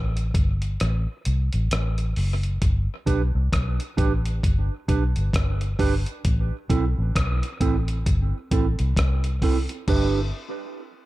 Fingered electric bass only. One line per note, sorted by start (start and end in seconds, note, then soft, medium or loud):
0.00 0.31 A1 medium
0.35 0.76 G1 medium
0.81 1.05 A1 medium
1.26 1.51 C2 medium
1.54 1.70 A1 medium
1.72 2.13 A1 medium
2.17 2.58 F#1 medium
2.62 2.87 G1 medium
3.07 3.32 B1 medium
3.35 3.51 C2 medium
3.53 3.77 B1 loud
3.98 4.39 A1 loud
4.44 4.68 G1 medium
4.89 5.14 B1 medium
5.17 5.33 G1 medium
5.34 5.75 G1 medium
5.80 6.04 G1 medium
6.25 6.50 A1 medium
6.70 6.95 B1 medium
6.99 7.14 A1 loud
7.16 7.41 B1 medium
7.61 8.03 A1 medium
8.07 8.31 G1 loud
8.52 8.77 A1 medium
8.80 8.96 C2 loud
8.97 9.66 C2 medium
9.88 10.30 G1 medium